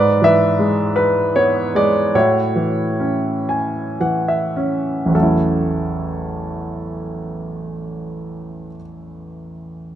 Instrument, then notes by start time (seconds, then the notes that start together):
grand piano
Already playing: G#2 B4 D5
0.22 E3 B4 E5
0.59 G#3
0.96 B4
1.36 B3 C#5
1.75 G#3 D5
2.15 A2 E4 F#4 C#5
2.56 E3
3.00 C#4
3.49 G#5
4.00 E3 F#5
4.28 E5
4.57 C#4
5.06 A1 E2
5.12 F#3 A3 A4
5.19 C#4 E4